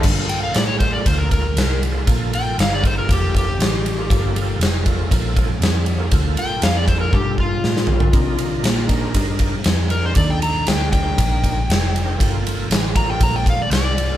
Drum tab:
CC |x---------------|----------------|----------------|----------------|
RD |--x-x-x-x-x-x-x-|x-x-x-x-x-x-x-x-|x-x-x-x-x-x-x-x-|x-x-x-x---------|
SD |----o-------o---|----o-------o---|----o-------o---|----o-------oo--|
T1 |----------------|----------------|----------------|--------o-------|
FT |----------------|----------------|----------------|--------------oo|
BD |o-----o-o-o-----|o-----o-o-o-----|o-----o-o-o-----|o-----o-o-o-----|

CC |----------------|----------------|----------------|
RD |x-x-x-x-x-x-x-x-|x-x-x-x-x-x-x-x-|x-x-x-x-x-x-x-x-|
SD |----o-------o---|----o-------o---|----o-------o---|
T1 |----------------|----------------|----------------|
FT |----------------|----------------|----------------|
BD |o-----o-o-o-----|o-----o-o-o-----|o-----o-o-o-----|